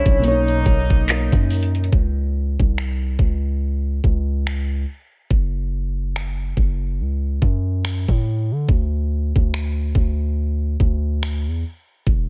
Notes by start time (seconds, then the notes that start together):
Already playing: C3 B3 D4 E4 C#5
0.06 B1, kick, closed hi-hat
0.19 B2 A#3
0.23 A#3 C#4 D#4, closed hi-hat
0.28 D#4 C#5
0.48 closed hi-hat
0.66 B1, kick, closed hi-hat
0.90 kick
1.08 clap, closed hi-hat
1.32 F#2, kick, closed hi-hat
1.50 closed hi-hat, open hi-hat
1.63 closed hi-hat
1.75 closed hi-hat
1.84 closed hi-hat
1.93 C#2, kick
2.60 C2, kick
2.78 finger snap
3.19 C#2, kick
4.04 C#2, kick
4.47 finger snap
5.31 F#1, kick
6.16 finger snap
6.57 F#1, kick
7.00 C#2
7.42 F#2, kick
7.85 finger snap
8.08 A2, kick
8.51 D3
8.69 D2, kick
9.36 D2, kick
9.54 finger snap
9.95 D2, kick
10.80 D2, kick
11.23 finger snap
11.47 E2
12.07 E1, kick